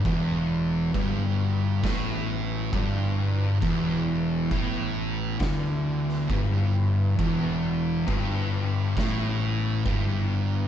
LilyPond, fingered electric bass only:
\new Staff \with { instrumentName = "Fingered electric bass" } { \clef bass \time 4/4 \key e \minor \tempo 4 = 67 e,,4 g,,4 a,,4 g,,4 | e,,4 a,,4 d,4 g,,4 | e,,4 g,,4 a,,4 g,,4 | }